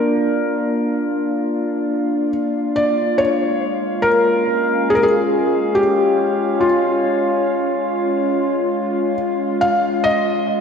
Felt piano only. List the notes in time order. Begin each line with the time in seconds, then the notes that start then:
Already playing: A#4
2.76 D5
3.18 C#5
4.02 A#4
4.90 G#4
4.95 A#4
5.03 G#4
5.75 G4
6.61 F4
9.61 F5
10.04 D#5